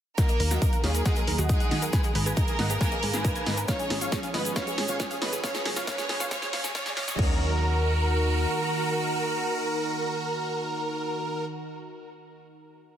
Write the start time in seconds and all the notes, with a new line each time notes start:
0.18 D#3 F#3 A#3 A#4 D#5 F#5, kick, snare, closed hi-hat, riser, shaker
0.29 A#4 D#5, closed hi-hat, shaker
0.40 D#2 A#4, open hi-hat
0.51 F#4 D#5 F#5, snare, closed hi-hat, shaker
0.62 D#4 A#4, kick, closed hi-hat, shaker
0.73 A#4 F#5, closed hi-hat, shaker
0.84 D#2 G#3 G#4 C#5 D#5 F5, snare, open hi-hat
0.95 A#4, closed hi-hat, shaker
1.05 D#5 F#5, kick, snare, closed hi-hat, shaker
1.16 A#4 D#5, closed hi-hat, shaker
1.27 D#2 A#4, open hi-hat
1.38 D#2 F#4 D#5 F#5, closed hi-hat, shaker
1.49 G#3 D#4 G#4, kick, closed hi-hat, shaker
1.60 F#5, closed hi-hat, shaker
1.71 D#2 D#5, snare, open hi-hat
1.82 A#4, closed hi-hat, shaker
1.93 G#3 B4 G#5, kick, snare, closed hi-hat, shaker
2.04 G#4 D#5, closed hi-hat, shaker
2.15 G#1 A#3 G#4 A#4 B4, open hi-hat
2.26 G#4 B4 G#5, closed hi-hat, shaker
2.37 D#4 G#4, kick, closed hi-hat, shaker
2.47 G#4 G#5, closed hi-hat, shaker
2.59 G#1 D#5 F#5, snare, open hi-hat
2.70 G#4 B4, closed hi-hat, shaker
2.81 B4 G#5, kick, snare, closed hi-hat, shaker
2.92 G#4 D#5, closed hi-hat, shaker
3.03 G#1 G#4 B4, open hi-hat
3.13 G#1 G#4 B4 G#5, snare, closed hi-hat, shaker
3.25 D#4, kick, closed hi-hat, shaker
3.35 G#5, closed hi-hat, shaker
3.46 G#1 D#5, snare, open hi-hat
3.57 B4, closed hi-hat, shaker
3.68 F3 C#4 C#5 F5, kick, snare, closed hi-hat, shaker
3.79 G#4 C#5, closed hi-hat, shaker
3.90 G#1 G#4, snare, open hi-hat
4.01 F4 C#5 F5, closed hi-hat, shaker
4.12 C#4 G#4, kick, snare, closed hi-hat, shaker
4.23 G#4 F5, closed hi-hat, shaker
4.34 G#1 B3 B4 C#5 D#5, snare, open hi-hat
4.45 G#4, closed hi-hat, shaker
4.56 C#4 C#5 F5, kick, snare, closed hi-hat, shaker
4.67 G#4 C#5, closed hi-hat, shaker
4.78 G#1 G#4, snare, open hi-hat
4.88 G#1 F4 C#5 F5, closed hi-hat, shaker
5.00 C#4 G#4, kick, snare, closed hi-hat, shaker
5.11 G#4 F5, closed hi-hat, shaker
5.22 G#1 B3 B4 C#5 D#5, snare, open hi-hat
5.33 G#4, closed hi-hat, shaker
5.44 F#3 C#4 C#5 F5, kick, snare, closed hi-hat, shaker
5.54 G#4 C#5, snare, closed hi-hat, shaker
5.65 F#1 G#4, snare, open hi-hat
5.76 F4 C#5 F5, snare, closed hi-hat, shaker
5.87 C#4 C#5 F5, kick, snare, closed hi-hat, shaker
5.98 G#4 C#5, snare, closed hi-hat, shaker
6.09 F#1 G#4, snare, open hi-hat
6.20 F4 C#5 F5, snare, closed hi-hat, shaker
6.31 C#4 C#5 F5, kick, snare, closed hi-hat, shaker
6.42 G#4 C#5, snare, closed hi-hat, shaker
6.53 F#1 C#4 C#5 F5, snare, open hi-hat
6.64 F#1 G#4 C#5, snare, closed hi-hat, shaker
6.75 C#4 C#5 F5, kick, snare, closed hi-hat, shaker
6.86 G#4 C#5, snare, closed hi-hat, shaker
6.97 F#1 C#4 C#5 F5, snare, open hi-hat
7.08 G#4 C#5, snare, closed hi-hat, shaker
7.19 D#2 D#3 D#4 F#4 A#4 A#5, kick, crash